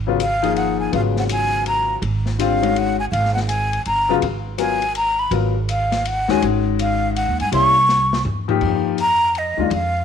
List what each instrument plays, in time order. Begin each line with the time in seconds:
Already playing: upright bass G#1
0.07 grand piano C#3 F#3 B3 F4
0.20 flute F5, hi-hat pedal, ride
0.42 grand piano F3 A#3 D#4 G#4, ride
0.56 flute F#5, ride
0.80 flute G#5
0.91 upright bass G#1, grand piano C#3 F#3 B3 F4, flute F5, ride
1.16 flute F#5, snare
1.29 flute G#5, hi-hat pedal, ride
1.66 flute A#5, ride
2.02 upright bass G#1, ride
2.26 snare
2.39 grand piano D3 G3 C4 F4, flute F5, hi-hat pedal, ride
2.62 grand piano D#3 G#3 C#4 F#4, ride
2.76 flute F#5, ride
3.00 flute G#5
3.12 upright bass G#1, flute F5, ride
3.25 snare
3.34 flute F#5, snare
3.48 flute G#5, hi-hat pedal, ride
3.73 ride
3.85 upright bass G1, flute A#5, ride
4.09 grand piano C#3 F#3 B3 F4
4.22 upright bass G#1, ride
4.58 grand piano F#3 B3 F4 A#4, flute G#5, hi-hat pedal, ride
4.82 ride
4.95 flute A#5, ride
5.19 flute B5
5.31 upright bass G#1, grand piano F#3 B3 F4 A#4, ride
5.69 flute F5, hi-hat pedal, ride
5.92 snare, ride
6.05 flute F#5, ride
6.28 upright bass D#2, grand piano D#3 G#3 C#4 F#4, flute G#5, snare
6.41 upright bass G#1, grand piano D#3 G#3 C#4 F#4, ride
6.79 flute F5, hi-hat pedal, ride
7.16 flute F#5, ride
7.28 upright bass D#2
7.40 upright bass G2, flute G#5, ride
7.52 upright bass C2, grand piano G3 A#3 C#4 E4, flute C#6, ride
7.89 snare, hi-hat pedal
8.13 snare
8.25 upright bass E2, floor tom
8.48 grand piano F3 A#3 D#4 G4, floor tom
8.61 upright bass F2, kick, crash
8.98 flute A#5, hi-hat pedal, ride
9.35 flute D#5, ride
9.57 upright bass D#2, grand piano D#3 G#3 D4 F4
9.70 upright bass F2, flute F5, ride